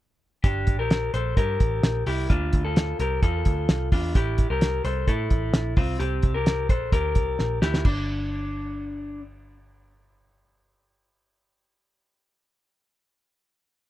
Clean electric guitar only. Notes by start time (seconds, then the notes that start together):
0.44 D4 G4
0.79 G4 A#4
1.14 A4 C5
1.37 G4 A#4
2.07 E4 G4
2.30 D4 F4
2.65 F4 A4
3.00 G4 A#4
3.23 F4 A4
3.92 D4 F4
4.16 E4 G4
4.50 G4 A#4
4.85 A4 C5
5.08 E4 A4
5.77 C4 F4
5.99 C4 G4
6.34 G4 A#4
6.70 A4 C5
6.93 G4 A#4
7.62 E4 G4
7.85 D4